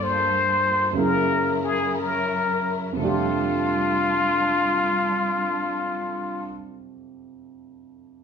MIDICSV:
0, 0, Header, 1, 4, 480
1, 0, Start_track
1, 0, Key_signature, -1, "major"
1, 0, Tempo, 977199
1, 948, Tempo, 1081081
1, 1419, Time_signature, 4, 2, 24, 8
1, 3748, End_track
2, 0, Start_track
2, 0, Title_t, "Muted trumpet"
2, 0, Program_c, 0, 59
2, 15, Note_on_c, 0, 72, 77
2, 481, Note_on_c, 0, 70, 81
2, 488, Note_off_c, 0, 72, 0
2, 793, Note_off_c, 0, 70, 0
2, 805, Note_on_c, 0, 68, 65
2, 979, Note_on_c, 0, 70, 65
2, 986, Note_off_c, 0, 68, 0
2, 1358, Note_off_c, 0, 70, 0
2, 1440, Note_on_c, 0, 65, 73
2, 2962, Note_off_c, 0, 65, 0
2, 3748, End_track
3, 0, Start_track
3, 0, Title_t, "String section"
3, 0, Program_c, 1, 48
3, 0, Note_on_c, 1, 55, 62
3, 0, Note_on_c, 1, 58, 55
3, 0, Note_on_c, 1, 65, 56
3, 0, Note_on_c, 1, 69, 62
3, 443, Note_off_c, 1, 58, 0
3, 444, Note_off_c, 1, 65, 0
3, 445, Note_off_c, 1, 69, 0
3, 446, Note_off_c, 1, 55, 0
3, 451, Note_on_c, 1, 54, 60
3, 452, Note_on_c, 1, 64, 55
3, 454, Note_on_c, 1, 61, 55
3, 456, Note_on_c, 1, 70, 65
3, 1407, Note_off_c, 1, 54, 0
3, 1408, Note_off_c, 1, 61, 0
3, 1408, Note_off_c, 1, 64, 0
3, 1409, Note_off_c, 1, 70, 0
3, 1415, Note_on_c, 1, 62, 51
3, 1418, Note_on_c, 1, 65, 52
3, 1420, Note_on_c, 1, 55, 57
3, 1420, Note_on_c, 1, 69, 63
3, 2937, Note_off_c, 1, 62, 0
3, 2940, Note_off_c, 1, 65, 0
3, 2942, Note_off_c, 1, 55, 0
3, 2942, Note_off_c, 1, 69, 0
3, 3748, End_track
4, 0, Start_track
4, 0, Title_t, "Grand piano"
4, 0, Program_c, 2, 0
4, 0, Control_c, 2, 64, 127
4, 0, Note_on_c, 2, 43, 43
4, 0, Note_on_c, 2, 50, 40
4, 0, Note_on_c, 2, 58, 40
4, 0, Note_on_c, 2, 65, 38
4, 0, Note_on_c, 2, 69, 46
4, 448, Note_off_c, 2, 43, 0
4, 454, Note_off_c, 2, 50, 0
4, 456, Note_on_c, 2, 42, 46
4, 460, Note_off_c, 2, 58, 0
4, 464, Control_c, 2, 64, 0
4, 464, Note_on_c, 2, 49, 45
4, 467, Note_off_c, 2, 65, 0
4, 475, Note_off_c, 2, 69, 0
4, 476, Note_on_c, 2, 58, 43
4, 482, Note_on_c, 2, 64, 41
4, 482, Note_on_c, 2, 68, 52
4, 558, Control_c, 2, 64, 127
4, 1389, Note_on_c, 2, 41, 50
4, 1404, Note_on_c, 2, 48, 47
4, 1419, Note_off_c, 2, 42, 0
4, 1419, Note_on_c, 2, 57, 48
4, 1422, Note_off_c, 2, 49, 0
4, 1424, Control_c, 2, 64, 0
4, 1428, Note_off_c, 2, 58, 0
4, 1430, Note_off_c, 2, 64, 0
4, 1430, Note_off_c, 2, 68, 0
4, 1432, Note_on_c, 2, 62, 49
4, 1444, Note_on_c, 2, 67, 61
4, 1495, Control_c, 2, 64, 127
4, 2929, Note_off_c, 2, 41, 0
4, 2944, Note_off_c, 2, 48, 0
4, 2959, Note_off_c, 2, 57, 0
4, 2972, Note_off_c, 2, 62, 0
4, 2984, Note_off_c, 2, 67, 0
4, 3748, End_track
0, 0, End_of_file